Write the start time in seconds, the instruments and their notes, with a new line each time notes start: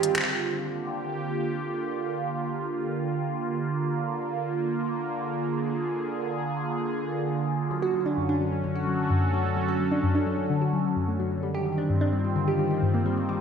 Already playing: analog synth pad D#3 C4 F4 G#4
0.03 synth pluck G3, closed hi-hat
0.15 synth pluck G4, finger snap, closed hi-hat
0.18 finger snap
0.21 finger snap
0.24 analog synth pad D3, finger snap
0.53 analog synth pad G4
0.66 analog synth pad A#3
5.13 analog synth pad G#4
7.71 synth pluck F#3
7.82 analog synth pad C#4, synth pluck F#4
7.94 synth pluck F#3
8.06 synth pluck D4
8.17 synth pluck F#2
8.29 synth pluck D4
8.41 synth pluck F#3
8.49 synth pluck F#3, analog synth pad F#4
8.55 analog synth pad A4
8.64 synth pluck D3
8.75 synth pluck F#4
8.87 synth pluck F#3
8.99 synth pluck F#3
9.10 synth pluck F#2
9.22 synth pluck A3
9.34 synth pluck F#3
9.57 synth pluck F#3
9.68 synth pluck F#4
9.80 synth pluck F#3
9.92 synth pluck D4
10.03 synth pluck F#2
10.15 synth pluck D4
10.27 synth pluck F#3
10.38 synth pluck F#3
10.50 synth pluck D3
10.61 synth pluck F#4
10.73 synth pluck F#3
10.85 synth pluck F#3
10.96 synth pluck F#2
11.08 synth pluck A3
11.20 synth pluck F#3
11.31 synth pluck F#3
11.43 analog synth pad D#3, synth pluck G3
11.54 synth pluck G4
11.65 synth pluck G3, analog synth pad C4
11.78 synth pluck D4
11.90 synth pluck G2
12.01 synth pluck D4
12.06 analog synth pad F4
12.13 synth pluck G3
12.24 synth pluck G3
12.36 synth pluck D3
12.48 synth pluck G4
12.59 synth pluck G3
12.71 synth pluck G3
12.83 synth pluck G2
12.94 synth pluck A#3
13.06 synth pluck G3
13.10 analog synth pad G#4
13.17 synth pluck G3
13.29 synth pluck G3